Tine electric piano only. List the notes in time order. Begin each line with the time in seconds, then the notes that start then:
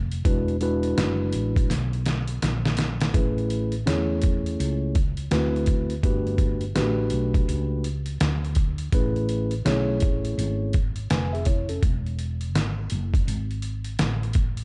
0.25 G#3 D4 E4 F#4 B4
0.61 G#3 D4 E4 F#4 B4
3.14 A3 C#4 E4 G#4 B4
3.86 A3 C#4 E4 G#4 C#5
5.31 A3 C4 E4 F#4 B4
6.03 A3 D4 F#4 G4 B4
6.75 A3 D4 F#4 G4 B4
8.93 A3 C#4 E4 G#4 B4
9.65 A3 C#4 E4 G#4 C#5
11.11 B4 G#5
11.33 G#4 E5
11.46 E4 C#5
11.69 C#4 A4